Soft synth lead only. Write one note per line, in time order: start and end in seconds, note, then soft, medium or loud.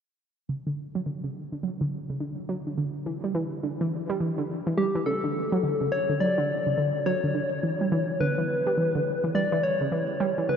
4.78 5.08 G4 medium
5.06 5.93 A4 medium
5.92 6.22 C#5 loud
6.20 7.08 D5 loud
7.06 8.22 C#5 loud
8.21 9.36 B4 loud
9.35 9.65 D5 loud
9.63 10.51 C#5 loud
10.49 10.57 B4 loud